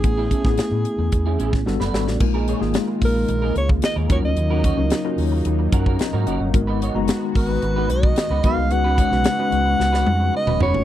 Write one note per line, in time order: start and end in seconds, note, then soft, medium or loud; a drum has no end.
0.00 0.24 A1 medium
0.00 0.33 A3 medium
0.00 0.33 B3 medium
0.00 1.64 G#4 medium
0.00 kick loud
0.00 closed hi-hat medium
0.04 0.33 C#4 medium
0.04 0.33 E4 medium
0.04 0.34 G#4 medium
0.04 muted clean electric guitar stroke soft
0.17 0.30 C#4 medium
0.17 0.31 E4 medium
0.17 0.32 G#4 medium
0.31 0.47 C#4 medium
0.31 0.44 E4 medium
0.31 0.44 A4 medium
0.31 kick medium
0.31 closed hi-hat medium
0.44 0.54 A1 medium
0.44 1.22 A3 medium
0.44 1.22 B3 medium
0.44 1.23 C#4 medium
0.44 1.23 E4 medium
0.44 1.23 G#4 medium
0.44 muted clean electric guitar stroke soft
0.44 kick medium
0.44 snare soft
0.58 muted fingered electric bass stroke soft
0.58 muted clean electric guitar stroke soft
0.58 snare medium
0.58 closed hi-hat medium
0.71 0.81 A2 medium
0.71 muted clean electric guitar stroke soft
0.85 closed hi-hat medium
0.98 1.08 E2 medium
0.98 muted clean electric guitar stroke medium
1.12 1.32 E2 medium
1.12 muted clean electric guitar stroke soft
1.12 kick medium
1.12 closed hi-hat medium
1.26 1.38 C#4 soft
1.26 1.39 E4 medium
1.26 1.39 G#4 medium
1.39 1.59 A1 medium
1.39 1.60 C#4 medium
1.39 1.53 E4 medium
1.39 1.52 G#4 medium
1.39 closed hi-hat medium
1.53 muted clean electric guitar stroke soft
1.53 kick medium
1.53 snare soft
1.66 1.76 G1 medium
1.66 1.88 G3 medium
1.66 1.88 B3 medium
1.66 1.88 D4 medium
1.66 1.88 F#4 medium
1.66 1.88 A4 loud
1.66 muted clean electric guitar stroke soft
1.66 snare soft
1.80 1.90 F#1 medium
1.80 1.92 D4 medium
1.80 1.93 F#4 medium
1.80 1.94 B4 medium
1.80 snare medium
1.93 2.03 G#1 medium
1.93 2.13 G3 medium
1.93 2.13 B3 medium
1.93 2.13 D4 medium
1.93 2.14 D4 medium
1.93 2.13 F#4 medium
1.93 2.07 F#4 medium
1.93 2.13 A4 medium
1.93 2.06 B4 medium
1.93 snare medium
2.07 2.17 A1 medium
2.07 muted clean electric guitar stroke soft
2.07 snare medium
2.20 2.50 A#1 medium
2.20 4.08 D#3 medium
2.20 2.49 G#3 medium
2.20 4.08 G#3 medium
2.20 2.50 A#3 medium
2.20 6.50 A#3 medium
2.20 2.50 D#4 medium
2.20 4.08 F4 medium
2.20 2.50 F4 medium
2.20 2.50 A#4 medium
2.20 muted clean electric guitar stroke soft
2.20 kick loud
2.20 crash medium
2.34 2.46 D#4 medium
2.34 2.47 G#4 medium
2.34 2.49 A#4 medium
2.47 2.64 D#4 medium
2.47 2.61 G#4 medium
2.47 2.60 C#5 medium
2.47 closed hi-hat medium
2.60 2.71 G#1 medium
2.60 3.39 G#3 medium
2.60 3.39 A#3 medium
2.60 3.39 D#4 medium
2.60 3.39 F4 medium
2.60 3.39 G#4 medium
2.60 muted clean electric guitar stroke soft
2.60 snare soft
2.74 muted clean electric guitar stroke soft
2.74 snare loud
2.74 closed hi-hat medium
2.88 muted clean electric guitar stroke soft
3.01 3.22 A#1 medium
3.01 3.54 A#4 medium
3.01 kick medium
3.01 open hi-hat medium
3.15 muted clean electric guitar stroke soft
3.28 3.49 A#1 medium
3.28 muted clean electric guitar stroke soft
3.28 closed hi-hat medium
3.42 3.55 D#4 medium
3.42 3.55 G#4 medium
3.42 3.56 A#4 medium
3.56 3.76 C#2 medium
3.56 3.70 C#5 medium
3.56 muted clean electric guitar stroke soft
3.56 closed hi-hat medium
3.69 muted clean electric guitar stroke soft
3.69 kick medium
3.82 3.97 D#5 loud
3.82 muted clean electric guitar stroke soft
3.82 snare loud
3.82 closed hi-hat medium
3.96 4.06 D#2 medium
3.96 4.09 D#4 soft
3.96 4.10 G#4 soft
3.96 4.10 A#4 medium
4.09 4.20 D#2 medium
4.09 6.52 C#3 medium
4.09 4.16 F3 medium
4.09 6.51 F#3 medium
4.09 4.64 C#4 medium
4.09 4.31 C#4 medium
4.09 6.51 D#4 medium
4.09 4.64 D#4 medium
4.09 4.65 F4 medium
4.09 4.23 F#4 medium
4.09 4.65 A#4 medium
4.09 4.22 A#4 medium
4.09 4.18 C#5 medium
4.09 kick loud
4.09 closed hi-hat medium
4.16 4.67 F#3 medium
4.23 4.33 D2 medium
4.23 5.29 D#5 medium
4.23 muted clean electric guitar stroke soft
4.37 4.67 D#2 medium
4.37 muted clean electric guitar stroke soft
4.37 closed hi-hat medium
4.50 4.63 C#4 medium
4.50 4.64 F#4 medium
4.50 4.65 A#4 medium
4.64 4.81 C#4 medium
4.64 4.78 F#4 medium
4.64 4.77 C#5 medium
4.64 kick medium
4.64 closed hi-hat medium
4.77 4.88 C#2 medium
4.77 4.97 F#3 medium
4.77 4.97 C#4 medium
4.77 4.97 D#4 medium
4.77 4.98 F4 medium
4.77 4.98 A#4 medium
4.77 muted clean electric guitar stroke soft
4.90 muted clean electric guitar stroke soft
4.90 snare loud
4.90 closed hi-hat medium
5.04 5.83 F#3 medium
5.04 5.83 C#4 medium
5.04 5.83 D#4 medium
5.04 5.83 F4 medium
5.04 5.73 A#4 medium
5.04 muted clean electric guitar stroke soft
5.18 5.38 D#2 medium
5.18 open hi-hat medium
5.32 muted clean electric guitar stroke soft
5.45 5.65 D#2 medium
5.45 muted clean electric guitar stroke soft
5.45 closed hi-hat medium
5.59 muted clean electric guitar stroke soft
5.72 5.92 F#2 medium
5.72 5.87 C#4 medium
5.72 5.86 F#4 medium
5.72 5.85 A#4 medium
5.72 kick loud
5.72 closed hi-hat medium
5.86 5.99 C#4 soft
5.86 5.99 F#4 medium
5.86 6.00 A#4 medium
5.86 5.99 A#4 medium
5.86 5.99 C#5 medium
5.86 kick medium
5.99 6.13 D#5 medium
5.99 6.25 A#5 medium
5.99 muted clean electric guitar stroke soft
5.99 snare medium
5.99 closed hi-hat medium
6.13 6.23 G#2 medium
6.13 6.26 C#4 soft
6.13 6.27 F#4 medium
6.13 6.27 A#4 medium
6.13 6.26 C#5 medium
6.27 6.37 F#1 medium
6.27 6.48 C#4 medium
6.27 6.40 F#4 medium
6.27 6.39 A#4 medium
6.27 6.40 D#5 medium
6.27 6.39 F#5 medium
6.27 closed hi-hat medium
6.40 6.50 G1 medium
6.40 6.67 D#5 medium
6.40 6.66 F#5 medium
6.40 muted clean electric guitar stroke soft
6.53 6.84 G#1 loud
6.53 8.69 D#3 medium
6.53 6.83 G#3 medium
6.53 10.84 G#3 medium
6.53 6.83 B3 medium
6.53 10.84 B3 medium
6.53 6.83 D#4 medium
6.53 8.69 F#4 medium
6.53 6.84 F#4 medium
6.53 6.84 A#4 medium
6.53 muted clean electric guitar stroke soft
6.53 kick loud
6.53 closed hi-hat medium
6.67 6.80 D#4 medium
6.67 6.81 F#4 medium
6.67 6.82 B4 medium
6.81 6.98 D#4 medium
6.81 6.95 F#4 medium
6.81 6.94 C#5 medium
6.81 closed hi-hat medium
6.94 7.05 F#1 medium
6.94 7.72 G#3 medium
6.94 7.73 B3 medium
6.94 7.73 D#4 medium
6.94 7.73 F#4 medium
6.94 7.73 A#5 loud
6.94 muted clean electric guitar stroke soft
7.08 muted clean electric guitar stroke soft
7.08 snare loud
7.08 closed hi-hat medium
7.22 muted clean electric guitar stroke soft
7.35 7.55 G#1 medium
7.35 7.92 B4 medium
7.35 kick medium
7.35 open hi-hat medium
7.49 muted clean electric guitar stroke soft
7.62 7.82 G#1 medium
7.62 muted clean electric guitar stroke soft
7.62 closed hi-hat medium
7.76 7.89 D#4 medium
7.76 7.89 F#4 medium
7.76 7.90 B4 medium
7.89 8.09 B1 medium
7.89 8.46 D#5 loud
7.89 muted clean electric guitar stroke soft
7.89 closed hi-hat medium
8.03 muted clean electric guitar stroke soft
8.03 kick loud
8.16 muted clean electric guitar stroke soft
8.16 snare loud
8.16 closed hi-hat medium
8.30 8.40 C#2 medium
8.30 8.43 D#4 soft
8.30 8.44 F#4 medium
8.30 8.44 B4 medium
8.43 8.54 B1 medium
8.43 8.63 G#3 medium
8.43 8.63 B3 medium
8.43 8.63 D#4 medium
8.43 8.65 D#4 medium
8.43 8.64 F#4 medium
8.43 8.58 F#4 medium
8.43 8.64 A#4 medium
8.43 8.56 B4 loud
8.43 8.73 F5 loud
8.43 kick medium
8.43 closed hi-hat medium
8.57 8.71 C2 medium
8.57 muted clean electric guitar stroke medium
8.70 9.01 C#2 loud
8.70 10.84 C#3 medium
8.70 9.00 G#3 medium
8.70 9.00 C#4 medium
8.70 9.00 D#4 medium
8.70 10.84 F#4 medium
8.70 9.01 F#4 medium
8.70 9.01 B4 medium
8.70 10.34 F#5 loud
8.70 muted clean electric guitar stroke soft
8.70 closed hi-hat medium
8.84 8.97 C#4 medium
8.84 8.97 F#4 medium
8.84 8.99 B4 loud
8.98 9.14 C#4 medium
8.98 9.12 F#4 medium
8.98 9.11 C#5 medium
8.98 kick medium
8.98 closed hi-hat medium
9.11 9.21 B1 medium
9.11 9.31 G#3 medium
9.11 9.31 C#4 medium
9.11 9.31 D#4 medium
9.11 9.32 F#4 medium
9.11 9.32 B4 medium
9.11 muted clean electric guitar stroke soft
9.11 snare soft
9.24 muted clean electric guitar stroke soft
9.24 snare loud
9.24 closed hi-hat medium
9.38 10.17 G#3 loud
9.38 10.17 C#4 medium
9.38 10.17 D#4 medium
9.38 10.17 F#4 medium
9.38 10.17 B4 loud
9.38 muted clean electric guitar stroke soft
9.52 9.72 C#2 medium
9.52 closed hi-hat medium
9.66 muted clean electric guitar stroke soft
9.79 9.99 C#2 medium
9.79 muted clean electric guitar stroke medium
9.79 snare medium
9.92 10.05 C#4 medium
9.92 10.06 F#4 medium
9.92 10.06 B4 medium
9.92 snare medium
10.06 10.27 F2 medium
10.06 muted clean electric guitar stroke soft
10.06 high tom medium
10.20 muted clean electric guitar stroke soft
10.33 10.60 D#5 loud
10.33 muted clean electric guitar stroke soft
10.47 10.57 D#1 medium
10.47 10.60 C#4 soft
10.47 10.60 F#4 medium
10.47 10.61 B4 medium
10.47 mid tom medium
10.60 10.74 E1 medium
10.60 10.82 C#4 medium
10.60 10.74 F#4 medium
10.60 10.73 B4 medium
10.60 10.84 C#5 loud
10.60 floor tom loud
10.74 10.84 F1 medium
10.74 muted clean electric guitar stroke soft
10.74 floor tom medium